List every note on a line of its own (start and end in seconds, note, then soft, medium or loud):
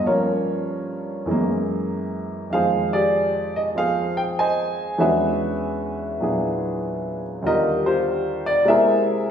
0.00 1.26 G2 soft
0.00 1.28 F3 soft
0.06 1.29 A#3 soft
0.06 1.25 F4 soft
0.06 1.87 A#4 medium
0.06 1.87 C#5 medium
0.11 1.31 C#4 medium
1.26 2.50 F#2 soft
1.26 2.51 E3 soft
1.26 2.52 G#3 soft
1.31 2.53 A#3 medium
2.50 4.97 F2 soft
2.50 4.98 D#3 soft
2.50 4.97 G#3 soft
2.50 2.94 F5 medium
2.54 5.00 F4 soft
2.54 2.93 G#4 medium
2.54 3.72 C5 medium
2.93 4.13 G4 medium
2.93 3.77 G#4 medium
2.93 3.56 D5 medium
3.56 3.61 D#5 medium
3.75 4.98 F3 soft
3.75 4.98 C4 soft
3.75 4.38 C5 soft
3.75 4.18 F5 medium
3.79 4.96 G#4 medium
4.17 4.22 G5 medium
4.39 4.95 C5 medium
4.39 4.96 D#5 medium
4.39 5.01 G#5 medium
4.98 7.44 E2 medium
4.98 7.44 E3 soft
4.98 7.45 G#3 soft
4.98 7.45 C#4 soft
4.98 6.21 D4 soft
4.98 7.45 F#4 medium
4.98 6.22 G#4 medium
4.98 7.21 B4 medium
4.98 7.21 E5 medium
6.20 7.44 A#2 soft
6.20 7.44 F#3 soft
6.20 7.45 D4 soft
6.20 7.45 E4 soft
6.20 7.45 G#4 soft
7.42 8.66 D#2 soft
7.42 8.67 D3 soft
7.42 8.68 G3 soft
7.46 7.86 F4 medium
7.46 7.85 G4 medium
7.46 8.64 A#4 medium
7.46 7.83 D#5 medium
7.86 8.64 F4 medium
7.86 8.64 G4 medium
7.86 8.43 C5 medium
8.46 8.66 D5 medium
8.65 9.31 C3 medium
8.65 9.31 G#3 medium
8.65 9.31 A#3 soft
8.65 9.31 C4 soft
8.65 9.31 E5 medium
8.69 9.31 E4 medium
8.69 9.31 G#4 medium
8.69 9.30 A#4 medium